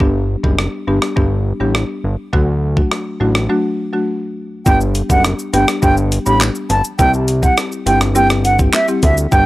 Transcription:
0.00 analog synth bass G1, marimba G3 B3 D4 G4, kick
0.43 analog synth bass F#1, marimba G3 B3 D4 G4, kick
0.59 cross-stick
0.87 analog synth bass G1, marimba G3 B3 D4 G4
1.02 cross-stick
1.16 analog synth bass G1, marimba G3 B3 D4 G4, kick
1.60 analog synth bass A1, marimba G3 B3 D4 G4
1.75 cross-stick
2.04 analog synth bass G1
2.33 analog synth bass D2, marimba F#3 A3 D4 F#4, kick
2.77 marimba F#3 A3 D4 F#4, kick
2.92 cross-stick
3.20 analog synth bass A1, marimba F#3 A3 D4 F#4
3.35 cross-stick
3.49 marimba F#3 A3 D4 F#4
3.93 marimba F#3 A3 D4 F#4
4.66 analog synth bass G1, marimba G3 B3 D4 G4, flute G5, kick, high bongo, shaker
4.81 shaker
4.95 closed hi-hat, shaker
5.10 analog synth bass F#1, marimba G3 B3 D4 G4, flute F#5, kick, shaker
5.24 cross-stick, shaker
5.39 shaker
5.53 analog synth bass G1, marimba G3 B3 D4 G4, flute G5, closed hi-hat, high bongo, shaker
5.68 cross-stick, shaker
5.82 analog synth bass G1, marimba G3 B3 D4 G4, flute G5, kick, high bongo, shaker
5.97 shaker
6.12 closed hi-hat, shaker
6.26 analog synth bass A1, marimba G3 B3 D4 G4, flute B5, shaker
6.41 cross-stick, clap, high bongo, shaker
6.55 shaker
6.70 analog synth bass G1, flute A5, closed hi-hat, low bongo, shaker
6.85 shaker
6.99 analog synth bass C2, marimba G3 C4 E4 G4, flute G5, kick, high bongo, shaker
7.14 shaker
7.28 closed hi-hat, shaker
7.42 marimba G3 C4 E4 G4, flute F#5, kick, shaker
7.58 cross-stick, shaker
7.72 shaker
7.86 analog synth bass G1, marimba G3 C4 E4 G4, flute G5, closed hi-hat, high bongo, shaker
8.01 cross-stick, shaker
8.15 marimba G3 C4 E4 G4, flute G5, high bongo, shaker
8.30 cross-stick, shaker
8.45 flute F#5, closed hi-hat, shaker
8.59 marimba G3 C4 E4 G4, kick, shaker
8.73 flute E5, cross-stick, clap, high bongo, shaker
8.88 marimba G3 C4 E4 G4, shaker
9.03 analog synth bass D2, flute E5, kick, closed hi-hat, low bongo, shaker
9.18 shaker
9.32 analog synth bass G1, marimba G3 B3 D4 G4, flute G5, kick, high bongo, shaker

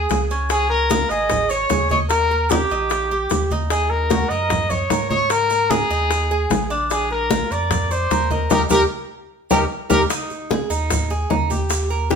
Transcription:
Already playing: cuban tres G#4, trumpet G#4
0.10 sub bass C#2, high bongo, low bongo, high conga, maracas
0.30 cuban tres C#4, maracas
0.49 cuban tres C#4, trumpet G#4, high bongo, high conga, maracas
0.70 trumpet A#4, high bongo, high conga
0.90 cuban tres F4, high bongo, high conga, maracas
1.10 sub bass G#1, cuban tres G#4, trumpet D#5, high conga, maracas
1.30 high bongo, high conga, low conga, maracas
1.49 trumpet C#5, cuban tres C#5, high bongo, high conga, maracas
1.69 sub bass D#2, cuban tres G#4, high bongo, low bongo, high conga, maracas
1.89 trumpet C#5, cuban tres D#5, high bongo, high conga, maracas
2.09 trumpet A#4, high bongo, high conga, maracas
2.31 cuban tres A#4, high bongo, high conga
2.49 trumpet G4, high bongo, high conga, maracas
2.70 sub bass A#1, cuban tres D#4, high bongo, maracas
2.90 high bongo, high conga, maracas
3.11 cuban tres G4, high bongo, high conga
3.30 sub bass D#2, high bongo, low bongo, high conga, maracas
3.50 cuban tres D#4, high conga, maracas
3.70 cuban tres D#4, trumpet G#4, high bongo, high conga, maracas
3.90 trumpet A#4, high bongo, high conga
4.10 cuban tres F#4, high bongo, high conga, maracas
4.30 sub bass F#2, cuban tres A#4, trumpet D#5, high conga, maracas
4.50 high bongo, high conga, low conga, maracas
4.70 trumpet C#5, cuban tres D#5, high bongo, high conga, low conga, maracas
4.90 sub bass G#2, cuban tres A#4, high bongo, low bongo, high conga, maracas
5.10 trumpet C#5, cuban tres D#5, high bongo, high conga, maracas
5.30 trumpet A#4, high bongo, high conga, maracas
5.50 cuban tres A#4, high bongo, high conga, maracas
5.70 trumpet G#4, high bongo, high conga, maracas
5.90 sub bass D#2, cuban tres D#4, high bongo, maracas
6.10 high bongo, high conga, maracas
6.31 cuban tres G#4, high bongo, high conga
6.50 sub bass A#1, high bongo, low bongo, high conga, maracas
6.70 cuban tres D4, maracas
6.90 cuban tres D4, trumpet G#4, high bongo, high conga, maracas
7.11 trumpet A#4, high bongo, high conga
7.30 cuban tres F4, high bongo, high conga, maracas
7.50 sub bass F2, cuban tres A#4, trumpet D5, high conga, maracas
7.71 high bongo, high conga, low conga, maracas
7.91 trumpet C5, cuban tres D5, high bongo, high conga, maracas
8.11 sub bass D#2, cuban tres A#4, high bongo, low bongo, high conga, maracas
8.30 trumpet A#4, cuban tres D#5, high bongo, high conga, maracas
8.50 sub bass D#2, cuban tres D#4 G4 A#4, trumpet A#4, low bongo, high conga, maracas
8.70 sub bass D#2, cuban tres D#4 G4 A#4, trumpet A#4, low bongo, high conga, maracas
9.50 sub bass D#2, cuban tres D#4 G4 A#4, trumpet A#4, low bongo, high conga, maracas
9.90 sub bass D#2, cuban tres D#4 G4 A#4, trumpet A#4, low bongo, high conga, maracas
10.10 cuban tres D#4, high bongo, high conga, maracas
10.30 high bongo, high conga, maracas
10.50 cuban tres G#4, high bongo, high conga, maracas
10.70 sub bass D#2, cuban tres D#4, high bongo, maracas
10.90 high bongo, high conga, low conga, maracas
11.10 cuban tres G#4, high bongo, high conga, maracas
11.30 sub bass D#2, cuban tres D#4, high bongo, low bongo, high conga, maracas
11.50 cuban tres G4, high conga, maracas
11.70 high bongo, high conga, maracas
11.90 cuban tres A#4, high bongo, high conga, maracas
12.10 cuban tres G4, high bongo, high conga, maracas

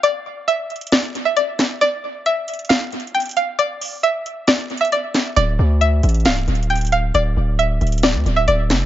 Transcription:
0.03 synth pluck D5, closed hi-hat
0.48 synth pluck E5, closed hi-hat
0.70 closed hi-hat
0.76 closed hi-hat
0.81 closed hi-hat
0.87 closed hi-hat
0.92 synth pluck D5, snare, closed hi-hat
1.15 closed hi-hat
1.25 synth pluck E5
1.37 synth pluck D5, closed hi-hat
1.59 snare, closed hi-hat
1.81 synth pluck D5, closed hi-hat
2.26 synth pluck E5, closed hi-hat
2.48 closed hi-hat
2.54 closed hi-hat
2.59 closed hi-hat
2.65 closed hi-hat
2.69 synth pluck F5, snare, closed hi-hat
2.92 closed hi-hat
3.00 closed hi-hat
3.07 closed hi-hat
3.15 synth pluck G5, closed hi-hat
3.20 closed hi-hat
3.22 closed hi-hat
3.26 closed hi-hat
3.29 closed hi-hat
3.31 closed hi-hat
3.37 synth pluck F5, closed hi-hat
3.59 synth pluck D5, closed hi-hat
3.82 open hi-hat
4.03 synth pluck E5, closed hi-hat
4.26 closed hi-hat
4.47 synth pluck D5, snare, closed hi-hat
4.70 closed hi-hat
4.77 synth pluck E5, closed hi-hat
4.85 closed hi-hat
4.92 synth pluck D5, closed hi-hat
5.14 snare, closed hi-hat
5.36 808-style bass D1, synth pluck D5, closed hi-hat
5.59 808-style bass D2
5.81 synth pluck E5, closed hi-hat
6.03 808-style bass A1, closed hi-hat
6.09 closed hi-hat
6.14 closed hi-hat
6.20 closed hi-hat
6.25 808-style bass C1, synth pluck F5, snare, closed hi-hat
6.48 808-style bass D1, closed hi-hat
6.55 closed hi-hat
6.63 closed hi-hat
6.70 synth pluck G5, closed hi-hat
6.76 closed hi-hat
6.77 closed hi-hat
6.81 closed hi-hat
6.85 closed hi-hat
6.87 closed hi-hat
6.92 synth pluck F5, closed hi-hat
7.14 808-style bass D1, synth pluck D5, closed hi-hat
7.37 808-style bass D1
7.59 synth pluck E5, closed hi-hat
7.81 808-style bass D1, closed hi-hat
7.87 closed hi-hat
7.92 closed hi-hat
7.98 closed hi-hat
8.03 synth pluck D5, snare, closed hi-hat
8.15 808-style bass D2
8.26 808-style bass D1, closed hi-hat
8.36 synth pluck E5
8.48 808-style bass D1, synth pluck D5, closed hi-hat
8.70 808-style bass F1, snare, closed hi-hat

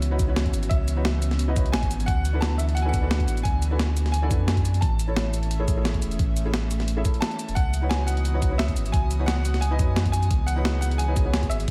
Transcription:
Already playing: sub bass C#2, analog synth pad E3 B3 C#4 F#4, grand piano E5
0.02 closed hi-hat, shaker
0.11 felt piano D#4 E4 F#4 B4 C#5
0.19 sub bass C#2, kick, closed hi-hat, shaker
0.27 felt piano C#4 E4 F#4 B4 C#5
0.36 snare, closed hi-hat
0.46 kick, closed hi-hat
0.53 sub bass G#1, closed hi-hat, shaker
0.63 closed hi-hat, shaker
0.69 sub bass C#2, grand piano E5, kick, closed hi-hat
0.88 closed hi-hat, shaker
0.96 felt piano D#4 E4 F#4 B4 C#5
1.05 snare, closed hi-hat
1.22 closed hi-hat, shaker
1.31 snare, closed hi-hat
1.39 closed hi-hat, shaker
1.48 felt piano D#4 E4 F#4 B4 D#5
1.55 sub bass C#2, felt piano D#4 E4 F#4 B4 C#5, kick, closed hi-hat, shaker
1.66 closed hi-hat
1.72 sub bass G#1, grand piano G#5, snare, closed hi-hat
1.83 kick, closed hi-hat
1.91 closed hi-hat, shaker
2.00 closed hi-hat, shaker
2.06 sub bass D2, analog synth pad D4 F#4, grand piano F#5, kick, closed hi-hat
2.25 closed hi-hat, shaker
2.33 felt piano D4 E4 F#4 A4 B4
2.41 grand piano A5, snare, closed hi-hat
2.58 grand piano E5, closed hi-hat, shaker
2.69 closed hi-hat
2.75 grand piano F#5, closed hi-hat, shaker
2.82 felt piano D4 E4 F#4 A4 B4, grand piano G#5
2.89 grand piano F#5
2.94 sub bass D2, kick, closed hi-hat, shaker
3.02 felt piano D4 E4 F#4 A4 B4
3.11 snare, closed hi-hat
3.20 kick, closed hi-hat
3.28 sub bass A1, closed hi-hat, shaker
3.37 closed hi-hat, shaker
3.43 sub bass D2, grand piano G#5, kick, closed hi-hat
3.62 closed hi-hat, shaker
3.71 felt piano D4 E4 F#4 A4 B4
3.79 snare, closed hi-hat
3.97 closed hi-hat, shaker
4.06 snare, closed hi-hat
4.12 grand piano G#5, closed hi-hat, shaker
4.22 felt piano D4 E4 F#4 A4 D5
4.30 sub bass F#2, felt piano D4 E4 F#4 A4 B4, kick, closed hi-hat, shaker
4.48 snare, closed hi-hat
4.57 kick, closed hi-hat
4.65 closed hi-hat, shaker
4.74 closed hi-hat, shaker
4.81 sub bass A1, analog synth pad E3 A3 C#4 E5, grand piano A5, kick, closed hi-hat
4.99 closed hi-hat, shaker
5.07 felt piano C#4 E4 A4 C#5
5.17 snare, closed hi-hat
5.34 closed hi-hat, shaker
5.43 closed hi-hat
5.51 closed hi-hat, shaker
5.59 felt piano C#4 E4 G#4 A4 C#5
5.68 sub bass A1, kick, closed hi-hat, shaker
5.76 felt piano C#4 E4 G#4 A4 C#5
5.85 snare, closed hi-hat
5.94 kick, closed hi-hat
6.02 sub bass E1, closed hi-hat, shaker
6.11 closed hi-hat, shaker
6.19 sub bass A1, kick, closed hi-hat
6.37 closed hi-hat, shaker
6.45 felt piano C#4 E4 G#4 A4 C#5
6.54 snare, closed hi-hat
6.71 closed hi-hat, shaker
6.80 snare, closed hi-hat
6.88 closed hi-hat, shaker
6.96 felt piano C#4 E4 G#4 A4 E5
7.04 felt piano E4 A4 C#5, kick, closed hi-hat, shaker
7.14 closed hi-hat
7.21 grand piano A5, snare, closed hi-hat
7.31 closed hi-hat
7.39 closed hi-hat, shaker
7.48 sub bass E1, closed hi-hat, shaker
7.55 sub bass C#2, analog synth pad E3 B3 F#4 D#6, grand piano F#5, kick, closed hi-hat
7.74 closed hi-hat, shaker
7.81 felt piano D#4 E4 F#4 B4 C#5
7.89 grand piano G#5, snare, closed hi-hat
8.07 grand piano F#5, closed hi-hat, shaker
8.17 closed hi-hat
8.25 closed hi-hat, shaker
8.33 felt piano D#4 E4 F#4 B4 C#5
8.42 sub bass C#2, kick, closed hi-hat, shaker
8.50 felt piano C#4 E4 F#4 B4 C#5
8.58 grand piano E5, snare, closed hi-hat
8.68 kick, closed hi-hat
8.76 sub bass G#1, closed hi-hat, shaker
8.86 closed hi-hat, shaker
8.92 sub bass C#2, grand piano G#5, kick, closed hi-hat
9.11 closed hi-hat, shaker
9.19 felt piano D#4 E4 F#4 B4 C#5
9.26 grand piano F#5, snare, closed hi-hat
9.45 closed hi-hat, shaker
9.54 snare, closed hi-hat
9.61 grand piano G#5, closed hi-hat, shaker
9.71 felt piano D#4 E4 F#4 B4 D#5
9.78 sub bass F#2, felt piano D#4 E4 F#4 B4 C#5, kick, closed hi-hat, shaker
9.96 snare, closed hi-hat
10.06 kick, closed hi-hat
10.12 grand piano G#5, closed hi-hat, shaker
10.23 closed hi-hat, shaker
10.31 sub bass C#2, analog synth pad G#4, kick, closed hi-hat
10.47 grand piano F#5, closed hi-hat, shaker
10.56 felt piano D#4 E4 F#4 B4 C#5
10.65 snare, closed hi-hat
10.81 grand piano F#5, closed hi-hat, shaker
10.91 closed hi-hat
10.98 grand piano G#5, closed hi-hat, shaker
11.08 felt piano D#4 E4 F#4 B4 C#5
11.16 sub bass C#2, kick, closed hi-hat, shaker
11.25 felt piano C#4 E4 F#4 B4 C#5
11.34 snare, closed hi-hat
11.43 kick, closed hi-hat
11.50 sub bass G#1, grand piano E5, closed hi-hat, shaker
11.60 closed hi-hat, shaker

